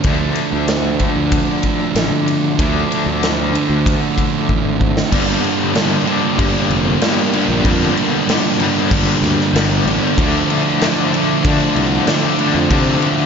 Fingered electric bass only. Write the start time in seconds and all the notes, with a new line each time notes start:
0.04 D2
0.53 D2
1.16 D2
1.95 A1
2.11 D3
2.59 D2
3.06 D2
3.69 D2
4.49 A1
4.64 G#1
5.12 G1
6.39 G2
6.70 F1
7.48 A#1
7.65 F2
8.91 G1
9.22 D2
9.53 G1
9.86 A1
10.18 D2
11.45 D3
11.76 C2
12.54 F2
12.70 C3